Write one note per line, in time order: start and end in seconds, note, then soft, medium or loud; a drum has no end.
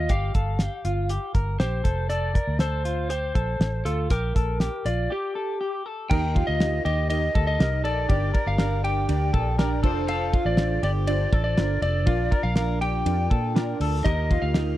0.00 0.10 F4 medium
0.00 0.11 D#5 medium
0.09 0.31 G1 medium
0.09 0.34 G4 loud
0.09 1.65 F5 medium
0.09 kick loud
0.09 closed hi-hat medium
0.35 0.67 G1 medium
0.35 0.60 A4 medium
0.35 kick medium
0.35 closed hi-hat medium
0.59 0.85 G4 medium
0.59 snare medium
0.59 closed hi-hat medium
0.85 1.17 G1 medium
0.85 1.10 F4 medium
0.85 closed hi-hat medium
1.09 1.34 G4 medium
1.09 closed hi-hat medium
1.35 1.56 G1 medium
1.35 1.59 A#4 medium
1.35 kick medium
1.35 closed hi-hat medium
1.60 1.81 A#1 medium
1.60 1.84 G4 medium
1.60 2.09 C5 medium
1.60 snare loud
1.60 closed hi-hat medium
1.84 2.38 F1 medium
1.84 2.09 A4 medium
1.84 kick medium
1.84 closed hi-hat medium
2.09 2.34 A4 medium
2.09 2.60 D5 medium
2.09 closed hi-hat medium
2.35 2.60 A#4 medium
2.35 kick medium
2.35 closed hi-hat medium
2.47 3.31 D2 medium
2.59 2.85 A4 medium
2.59 3.09 C5 medium
2.59 snare medium
2.59 closed hi-hat medium
2.85 3.10 F4 medium
2.85 closed hi-hat medium
3.10 3.35 G4 medium
3.10 3.88 C5 medium
3.10 closed hi-hat medium
3.35 3.57 A#1 medium
3.35 3.82 A4 medium
3.35 kick medium
3.35 closed hi-hat medium
3.60 3.81 A1 medium
3.60 snare loud
3.60 closed hi-hat medium
3.85 4.07 D2 medium
3.85 4.11 F4 medium
3.85 4.09 A4 medium
3.85 closed hi-hat medium
4.10 4.32 A#1 medium
4.10 4.35 G4 medium
4.10 4.88 A#4 medium
4.10 kick loud
4.10 closed hi-hat medium
4.36 4.68 A#1 medium
4.36 4.60 A4 medium
4.36 kick medium
4.36 closed hi-hat medium
4.60 4.86 G4 medium
4.60 snare medium
4.60 closed hi-hat medium
4.85 5.07 A#1 medium
4.85 5.11 F4 medium
4.85 5.11 D5 medium
4.85 closed hi-hat medium
5.10 5.35 G4 medium
5.10 5.82 G4 medium
5.35 5.60 A4 medium
5.61 5.86 G4 medium
5.86 6.10 A4 medium
6.10 6.42 D#2 loud
6.10 6.58 D#4 medium
6.10 6.58 G4 medium
6.10 6.35 A#4 loud
6.10 6.58 A#4 medium
6.10 6.58 D#5 medium
6.10 6.45 G5 loud
6.10 kick loud
6.10 crash loud
6.35 6.82 F4 medium
6.35 kick medium
6.35 ride medium
6.47 6.80 D2 medium
6.47 6.82 D#5 medium
6.60 7.07 D#4 medium
6.60 7.08 G4 medium
6.60 7.08 A#4 medium
6.60 7.08 D#5 medium
6.60 snare loud
6.60 ride medium
6.85 7.28 D#2 medium
6.85 7.32 G4 medium
6.85 7.08 D#5 medium
6.85 ride medium
7.10 7.57 D#4 medium
7.10 7.57 G4 medium
7.10 7.57 A#4 medium
7.10 7.46 D#5 medium
7.10 7.58 D#5 medium
7.10 ride medium
7.35 7.56 D2 medium
7.35 7.59 A4 medium
7.35 kick loud
7.35 ride medium
7.47 7.84 D#5 medium
7.59 7.84 C2 medium
7.59 8.07 D#4 medium
7.59 8.07 G4 medium
7.59 7.83 A#4 medium
7.59 8.07 A#4 medium
7.59 8.08 D#5 medium
7.59 snare loud
7.59 ride medium
7.84 8.06 A#1 medium
7.84 8.08 A4 medium
7.84 8.49 D5 medium
7.84 ride medium
8.08 8.31 G1 loud
8.08 8.56 D4 medium
8.08 8.33 G4 loud
8.08 8.56 G4 medium
8.08 8.57 A#4 medium
8.08 8.57 D5 loud
8.08 kick loud
8.08 ride medium
8.34 8.58 A#4 medium
8.34 kick medium
8.34 ride medium
8.47 9.06 G1 medium
8.47 8.84 F5 medium
8.58 9.06 D4 medium
8.58 9.06 G4 medium
8.58 8.84 A#4 medium
8.58 9.06 A#4 medium
8.58 9.07 D5 medium
8.58 snare loud
8.58 ride medium
8.84 9.31 G4 medium
8.84 9.80 G5 medium
8.84 ride medium
9.08 9.30 D2 medium
9.08 9.55 D4 medium
9.08 9.56 G4 medium
9.08 9.56 A#4 medium
9.08 9.57 D5 medium
9.08 ride medium
9.33 9.83 A#1 loud
9.33 9.58 A4 medium
9.33 kick medium
9.33 ride soft
9.58 9.81 D4 medium
9.58 9.84 G4 medium
9.58 9.82 A#4 medium
9.58 9.84 A#4 medium
9.58 9.84 D5 loud
9.58 snare loud
9.58 ride medium
9.83 10.36 F1 medium
9.83 10.53 D4 loud
9.83 10.54 F4 medium
9.83 10.07 A4 medium
9.83 10.54 A4 medium
9.83 10.55 C5 loud
9.83 kick loud
9.83 crash medium
10.08 10.33 A4 loud
10.08 10.47 F5 medium
10.08 ride medium
10.33 10.80 F4 medium
10.33 kick medium
10.33 ride medium
10.45 10.77 A1 loud
10.45 10.83 D5 medium
10.57 11.05 D4 medium
10.57 11.05 F4 medium
10.57 11.06 A4 medium
10.57 11.06 C5 medium
10.57 snare loud
10.57 ride medium
10.83 11.25 G1 loud
10.83 11.33 G4 medium
10.83 10.91 D5 medium
10.83 ride medium
11.07 11.55 D4 medium
11.07 11.55 F4 medium
11.07 11.55 A4 medium
11.07 11.56 C5 medium
11.07 11.43 D5 medium
11.07 ride medium
11.33 11.54 A1 medium
11.33 11.57 A4 medium
11.33 kick medium
11.33 ride medium
11.44 11.81 D5 medium
11.57 11.78 G1 medium
11.57 12.04 D4 medium
11.57 12.04 F4 medium
11.57 12.05 A4 medium
11.57 11.82 A#4 medium
11.57 12.05 C5 medium
11.57 snare loud
11.57 ride medium
11.82 12.07 F1 medium
11.82 12.07 A4 medium
11.82 12.46 D5 loud
11.82 ride medium
12.06 12.28 A#1 loud
12.06 12.53 D4 medium
12.06 12.32 F4 loud
12.06 12.54 F4 medium
12.06 12.54 A#4 medium
12.06 12.54 D5 loud
12.06 kick loud
12.06 ride medium
12.31 12.55 A#4 medium
12.31 kick medium
12.31 ride medium
12.43 13.03 A#1 loud
12.43 12.81 F5 loud
12.55 13.03 D4 medium
12.55 13.03 F4 medium
12.55 12.81 A#4 medium
12.55 13.04 A#4 medium
12.55 13.04 D5 medium
12.55 snare loud
12.55 ride medium
12.81 13.28 G4 medium
12.81 13.77 G5 medium
12.81 ride medium
13.05 13.27 F2 medium
13.05 13.53 D4 medium
13.05 13.53 F4 medium
13.05 13.53 A#4 medium
13.05 13.54 D5 medium
13.05 ride medium
13.31 13.73 A#2 medium
13.31 13.56 A4 medium
13.31 kick medium
13.31 ride medium
13.54 14.02 D4 medium
13.54 14.03 F4 medium
13.54 13.81 A#4 medium
13.54 14.03 A#4 medium
13.54 14.03 D5 medium
13.54 snare loud
13.54 ride medium
13.80 14.02 D2 medium
13.80 14.05 A4 medium
13.80 open hi-hat medium
13.80 ride medium
14.04 14.37 D#2 loud
14.04 14.52 D#4 medium
14.04 14.52 G4 medium
14.04 14.52 A#4 medium
14.04 14.30 A#4 loud
14.04 14.43 D#5 medium
14.04 14.53 D#5 medium
14.04 kick loud
14.04 hi-hat pedal medium
14.04 ride medium
14.31 14.77 F4 medium
14.31 kick medium
14.31 ride medium
14.42 14.74 D2 medium
14.42 14.78 F5 loud
14.54 14.78 D#4 medium
14.54 14.78 G4 medium
14.54 14.78 A#4 medium
14.54 14.78 D#5 medium
14.54 snare loud
14.54 ride medium